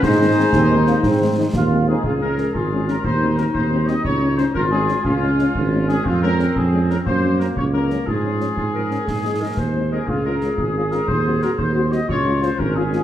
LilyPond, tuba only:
\new Staff \with { instrumentName = "Tuba" } { \clef bass \time 6/8 \key des \major \tempo 4. = 119 aes,4. ees,4. | aes,4. ees,4. | des,4. aes,,4. | ees,4. ees,4. |
des,4. aes,,4. | des,4. aes,,4. | f,4. f,4. | ges,4. des,4. |
aes,4. aes,4. | aes,4. ees,4. | des,4. aes,,4. | ees,4. ees,4. |
des,4. aes,,4. | }